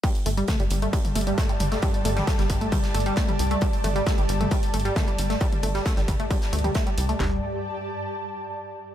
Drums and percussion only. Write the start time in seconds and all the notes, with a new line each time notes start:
0.03 kick, closed hi-hat
0.15 closed hi-hat
0.26 closed hi-hat, open hi-hat
0.37 closed hi-hat
0.48 kick, snare, closed hi-hat, mid tom
0.60 closed hi-hat
0.70 closed hi-hat, open hi-hat
0.82 closed hi-hat
0.93 kick, closed hi-hat
1.05 open hi-hat, mid tom
1.15 closed hi-hat, open hi-hat
1.21 closed hi-hat
1.27 closed hi-hat
1.38 kick, snare, closed hi-hat
1.49 closed hi-hat
1.60 closed hi-hat, open hi-hat, mid tom
1.72 snare, closed hi-hat
1.82 kick, closed hi-hat
1.94 closed hi-hat
2.05 closed hi-hat, open hi-hat
2.17 snare, closed hi-hat, mid tom
2.27 kick, snare, closed hi-hat
2.39 snare, open hi-hat
2.50 kick, closed hi-hat, open hi-hat
2.61 closed hi-hat
2.72 kick, closed hi-hat, mid tom
2.83 snare, closed hi-hat
2.94 closed hi-hat, open hi-hat
3.00 closed hi-hat
3.06 closed hi-hat
3.16 kick, snare, closed hi-hat
3.29 closed hi-hat, mid tom
3.39 closed hi-hat, open hi-hat
3.51 closed hi-hat
3.61 kick, closed hi-hat
3.73 closed hi-hat
3.84 closed hi-hat, open hi-hat, mid tom
3.96 closed hi-hat
4.06 kick, snare, closed hi-hat
4.18 closed hi-hat
4.29 closed hi-hat, open hi-hat
4.41 closed hi-hat, mid tom
4.51 kick, closed hi-hat
4.63 open hi-hat
4.74 closed hi-hat, open hi-hat
4.80 closed hi-hat
4.85 closed hi-hat
4.96 kick, snare, closed hi-hat, mid tom
5.08 closed hi-hat
5.18 closed hi-hat, open hi-hat
5.30 snare, closed hi-hat
5.41 kick, closed hi-hat
5.53 closed hi-hat, mid tom
5.63 closed hi-hat, open hi-hat
5.75 snare, closed hi-hat
5.86 kick, snare, closed hi-hat
5.97 snare, open hi-hat
6.08 kick, closed hi-hat, open hi-hat, mid tom
6.20 closed hi-hat
6.31 kick, closed hi-hat
6.42 snare, closed hi-hat
6.53 closed hi-hat, open hi-hat
6.59 closed hi-hat
6.64 closed hi-hat, mid tom
6.75 kick, snare, closed hi-hat
6.87 closed hi-hat
6.98 closed hi-hat, open hi-hat
7.09 closed hi-hat
7.20 snare, clap, floor tom